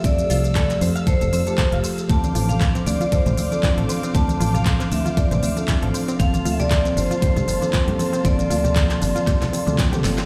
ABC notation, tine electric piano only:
X:1
M:4/4
L:1/16
Q:"Swing 16ths" 1/4=117
K:Dm
V:1 name="Tine electric piano"
[F,A,G]8- [F,A,G]3 [F,A,G]4- [F,A,G] | [F,CDA]8- [F,CDA]3 [F,CDA]4- [F,CDA] | [F,CDA]8- [F,CDA]3 [F,CDA]4- [F,CDA] | [F,B,CA]8- [F,B,CA]3 [F,B,CA]4- [F,B,CA] |
[F,B,CA]8- [F,B,CA]3 [F,B,CA]4- [F,B,CA] |]